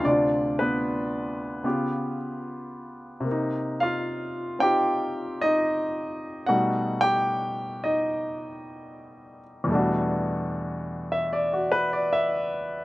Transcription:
Already playing: D2
0.01 C3 D3 D5
0.07 D4 F4
0.59 B3 B4
1.63 C#3 B3 F4 G4
3.20 C3 A#3
3.31 D#4
3.80 F4 F5
4.59 C4 D#4 F4 G4 G5
5.41 D#4 D#5
6.46 B2 G3 A3 D#4 F#4 F#5
7.01 G4 G5
7.84 D#4 D#5
9.64 E2 B2
9.68 G3 A3
9.73 D4 F#4
11.12 E5
11.33 D5
11.53 F#4
11.72 B4
11.93 D5
12.13 E5

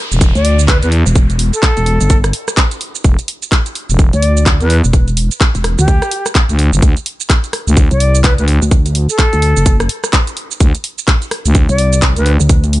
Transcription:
Already playing: downlifter
0.12 E1, closed hi-hat, shaker
0.21 kick, closed hi-hat, shaker
0.35 D2 D5, closed hi-hat, shaker
0.45 open hi-hat
0.59 closed hi-hat, shaker
0.68 B4, kick, clap, closed hi-hat, shaker
0.83 E2 B4, closed hi-hat, shaker
0.92 open hi-hat
1.06 E1, shaker
1.16 kick, closed hi-hat, shaker
1.30 closed hi-hat, shaker
1.39 open hi-hat
1.53 A4, closed hi-hat, shaker
1.63 kick, clap, closed hi-hat, shaker
1.77 E1, closed hi-hat, shaker
1.86 open hi-hat
2.01 G1, closed hi-hat, shaker
2.10 kick, closed hi-hat, shaker
2.24 cross-stick, closed hi-hat, shaker
2.33 open hi-hat
2.48 cross-stick, closed hi-hat, shaker
2.57 kick, clap, closed hi-hat, shaker
2.71 closed hi-hat, shaker
2.81 open hi-hat
2.95 shaker
3.04 E1, kick, closed hi-hat, shaker
3.19 closed hi-hat, shaker
3.28 open hi-hat
3.42 closed hi-hat, shaker
3.52 kick, clap, closed hi-hat, shaker
3.66 closed hi-hat, shaker
3.75 open hi-hat
3.90 E1, closed hi-hat, shaker
3.99 kick, closed hi-hat, shaker
4.13 D2 D5, closed hi-hat, shaker
4.22 open hi-hat
4.37 closed hi-hat, shaker
4.46 kick, clap, closed hi-hat, shaker
4.60 E2 B4, closed hi-hat, shaker
4.70 open hi-hat
4.84 E1, shaker
4.93 kick, closed hi-hat, shaker
5.08 closed hi-hat, shaker
5.17 open hi-hat
5.31 closed hi-hat, shaker
5.41 kick, clap, closed hi-hat, shaker
5.55 E1, closed hi-hat, shaker
5.64 cross-stick, open hi-hat
5.79 D2 G4, closed hi-hat, shaker
5.88 kick, closed hi-hat, shaker
6.02 cross-stick, closed hi-hat, shaker
6.11 open hi-hat
6.26 cross-stick, closed hi-hat, shaker
6.35 kick, clap, closed hi-hat, shaker
6.49 D2, closed hi-hat, shaker
6.59 open hi-hat
6.73 G1, shaker
6.82 D2, kick, closed hi-hat, shaker
6.97 closed hi-hat, shaker
7.06 open hi-hat
7.20 closed hi-hat, shaker
7.30 kick, clap, closed hi-hat, shaker
7.44 closed hi-hat, shaker
7.53 cross-stick, open hi-hat
7.67 D2, closed hi-hat, shaker
7.77 kick, closed hi-hat, shaker
7.91 C2 D5, closed hi-hat, shaker
8.00 open hi-hat
8.15 closed hi-hat, shaker
8.24 B4, kick, clap, closed hi-hat, shaker
8.38 D2 B4, closed hi-hat, shaker
8.48 open hi-hat
8.62 D2, shaker
8.71 kick, closed hi-hat, shaker
8.86 closed hi-hat, shaker
8.95 open hi-hat
9.09 A4, closed hi-hat, shaker
9.19 kick, clap, closed hi-hat, shaker
9.33 D2, closed hi-hat, shaker
9.42 open hi-hat
9.57 F#1, closed hi-hat, shaker
9.66 kick, closed hi-hat, shaker
9.80 cross-stick, closed hi-hat, shaker
9.89 open hi-hat
10.04 cross-stick, closed hi-hat, shaker
10.13 kick, clap, closed hi-hat, shaker
10.27 closed hi-hat, shaker
10.37 open hi-hat
10.51 shaker
10.60 D2, kick, closed hi-hat, shaker
10.75 closed hi-hat, shaker
10.84 open hi-hat
10.98 closed hi-hat, shaker
11.08 kick, clap, closed hi-hat, shaker
11.22 closed hi-hat, shaker
11.31 cross-stick, open hi-hat
11.45 D2, closed hi-hat, shaker
11.55 kick, closed hi-hat, shaker
11.69 C2 D5, closed hi-hat, shaker
11.78 open hi-hat
11.93 closed hi-hat, shaker
12.02 kick, clap, closed hi-hat, shaker
12.16 D2 B4, closed hi-hat, shaker
12.26 open hi-hat
12.40 D2, shaker
12.49 kick, closed hi-hat, shaker
12.64 closed hi-hat, shaker
12.73 open hi-hat

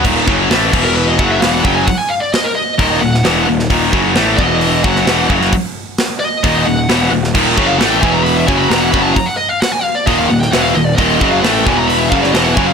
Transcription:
0.05 D#1 D#2 A#2 D#3, kick, crash
0.27 F#1 F#2 C#3 F#3, kick
0.51 A1 A2 E3 A3, snare, open hi-hat
0.73 E1 E2 B2 E3, kick, crash
0.84 A#4
0.96 B4
1.07 D#5
1.18 F#1 F#2 C#3 F#3 F#5, kick
1.31 E5
1.41 E1 E2 B2 E3 F5, snare, open hi-hat
1.52 F#5
1.64 F#1 F#2 C#3 F#3 G5, kick
1.75 G#5
1.87 F#5, kick, open hi-hat
1.99 G#5
2.10 F5
2.21 D5
2.33 D#5, snare, open hi-hat
2.44 A#4
2.55 D#5
2.78 D#1 D#2 A#2 D#3, kick, open hi-hat
3.01 D#1 D#2 A#2 F#5
3.14 snare
3.24 E1 E2 B2 E3, snare, open hi-hat
3.48 D#1 D#2 A#2
3.59 snare
3.70 D#1 D#2 A#2 D#3, kick, open hi-hat
3.92 F#1 F#2 C#3 F#3, kick
4.15 A1 A2 E3 A3, snare, open hi-hat
4.37 E1 E2 B2 E3 D#5, kick
4.61 open hi-hat
4.83 F#1 F#2 C#3 F#3 F#5, kick
4.96 snare
5.07 E1 E2 B2 E3, snare, open hi-hat
5.29 F#1 F#2 C#3 F#3, kick
5.41 snare
5.53 kick, open hi-hat
5.98 snare, open hi-hat
6.20 D#5
6.44 D#1 D#2 A#2 D#3, kick, open hi-hat
6.66 D#1 D#2 A#2 F#5
6.89 E1 E2 B2 E3, snare, open hi-hat
7.12 D#1 D#2 A#2
7.24 snare
7.35 D#1 D#2 A#2 D#3, kick, crash
7.57 F#1 F#2 C#3 F#3, kick
7.67 F5
7.77 A1 A2 E3 A3 F#5, snare, open hi-hat
7.89 G5
8.01 E1 E2 B2 E3 G#5, kick
8.12 A#5
8.23 B5, open hi-hat
8.35 E5
8.47 F#1 F#2 C#3 F#3 G#5, kick
8.57 B5
8.69 E1 E2 B2 E3 A#5, snare, open hi-hat
8.80 F#5
8.91 F#1 F#2 C#3 F#3 B5, kick
9.02 A5
9.14 A#5, kick, open hi-hat
9.26 F#5
9.37 D#5
9.49 F5
9.60 F#5, snare, open hi-hat
9.72 G#5
9.83 F5
9.95 D5
10.06 D#1 D#2 A#2 D#3 D#5, kick, open hi-hat
10.18 F5
10.28 D#1 D#2 A#2 F#5
10.41 G5, snare
10.52 E1 E2 B2 E3 F#5, snare, open hi-hat
10.63 F5
10.74 D#1 D#2 A#2 D#5
10.85 D5
10.96 D#1 D#2 A#2 D#3 D#5, kick, open hi-hat
11.21 F#1 F#2 C#3 F#3, kick
11.31 F5
11.41 A1 A2 E3 A3 F#5, snare, open hi-hat
11.54 G5
11.64 E1 E2 B2 E3 G#5, kick
11.77 A#5
11.88 B5, open hi-hat
11.99 E5
12.10 F#1 F#2 C#3 F#3 F5, kick
12.21 D5, snare
12.33 E1 E2 B2 E3 D#5, snare, open hi-hat
12.44 F#5
12.55 F#1 F#2 C#3 F#3 G#5, kick
12.67 F5

